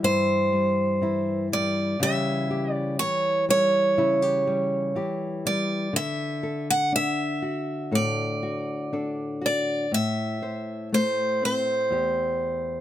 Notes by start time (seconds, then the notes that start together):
Already playing: E3 G3
0.03 G2 E4 C5
0.53 G3
1.01 E3 E4
1.52 G3 D5
2.00 C#3 E3 G3 G4 E5
2.51 G4
2.73 D5
2.99 E3 C#5
3.49 G3 C#5
3.98 C#3 E4
4.22 G4
4.47 G3
4.95 E3 G4
5.46 G3 D5
5.93 D3 E5
6.43 A4
6.70 F#5
6.92 D4 E5
7.42 F#4
7.91 A2 A4 D5
8.43 F#4
8.93 D4 A4
9.41 F#4
9.46 D5
9.92 A2 E5
10.42 C5
10.92 A3 C5
11.42 C4 C5
11.91 E2 G4